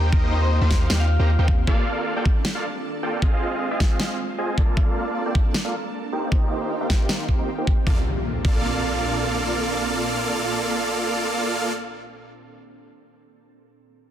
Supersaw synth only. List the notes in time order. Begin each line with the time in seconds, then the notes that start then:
Already playing: A#3 D#4 G4 C5 G5
0.12 A#3 D#4 G4 C5 D#5
0.61 A#3 D#4 G4 C5 F5
0.90 A#3 D#4 G4 C5 F5
1.19 A#3 D#4 G4 C5 A#5
1.39 A#3 D#4 G4 C5 G5
1.67 A#3 F4 A4 D5 F5
2.16 A#3 F4 A4 D5 G5
2.55 A#3 F4 A4 D5 F5
3.03 A#3 F4 A4 D5 G5
3.22 C4 F4 G#4 D#5 F5
3.71 C4 F4 G#4 D#5 F5
4.00 C4 F4 G#4 D#5 F5
4.38 C4 F4 G#4 D#5 G#5
4.58 A#3 F4 A4 D5 A5
4.77 A#3 F4 A4 D5 F5
5.26 A#3 F4 A4 D5 G5
5.65 A#3 F4 A4 D5 F5
6.12 A#3 D#4 G4 C5 G5
6.32 A#3 D#4 G4 C5 D#5
6.81 A#3 D#4 G4 C5 F5
7.09 A#3 D#4 G4 C5 F5
7.39 A#3 D#4 G4 C5 A#5
7.58 A#3 D#4 G4 C5 G5
7.87 A#3 F4 A4 D5 F5
8.45 A#3 F4 A4 D5 F5